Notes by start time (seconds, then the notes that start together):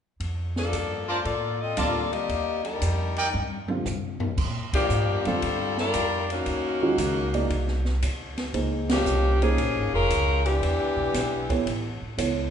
0.20 F2, ride
0.56 F3 A#3 D4 A4, snare
0.73 G2, hi-hat pedal, ride
1.08 A3 D4 F4 A#4 C5 D5 A5
1.25 A2 A#3 F4 A4 D5, ride
1.61 C4 F4 A4 D#5
1.77 D2 D3 G3 A#3 C4 F4 A4 A#4 D5 A5, hi-hat pedal, ride
2.12 A#3 G4 D5 D#5, ride
2.29 D#2, ride
2.64 G3 D4 D#4 A#4, ride
2.81 F2, hi-hat pedal, ride
3.16 D#4 A#4 D5 G5, ride
3.33 G2, high tom
3.68 D3 G3 C4 F4, high tom
3.85 C3, floor tom, hi-hat pedal
4.20 floor tom
4.38 A#2, kick, crash
4.73 F3 A#3 D4 G4, muted upright bass stroke, kick, ride
4.89 G#2, hi-hat pedal
5.08 G2
5.25 F2 D3 G3 C4 D4 F4 A4, ride
5.42 G2, ride
5.77 G3 D4 F4 A#4, snare
5.94 F2, hi-hat pedal, ride
6.30 D#3 A#3 C#4 F#4, ride
6.46 D#2, ride
6.82 D#3 G#3 C#4 F#4
6.98 C#2, hi-hat pedal, ride
7.34 A#3 D#4 G#4 D5, ride
7.50 C2, ride
7.68 snare
7.85 snare
8.02 D2, hi-hat pedal, ride
8.38 snare, ride
8.54 C#2 G#3 A#3 D#4 C5, ride
8.89 F3 A#3 C#4 G4, snare, ride
9.06 C2, hi-hat pedal
9.42 F3 A#3 C#4 D#4 G#4 C5, ride
9.57 A#1, ride
9.75 G#1
9.93 F1 G#3 C#4 F4 A#4
10.10 C#2, hi-hat pedal, ride
10.45 E3 B3 D4 G4, ride
10.61 E2, ride
10.79 D2
10.96 B1
11.14 B1, snare, hi-hat pedal, ride
11.50 B3 E4 A4 C#5, kick, ride
11.66 A1, ride
12.02 muted upright bass stroke
12.18 C#2 B3 E4 A4 C#5, hi-hat pedal, ride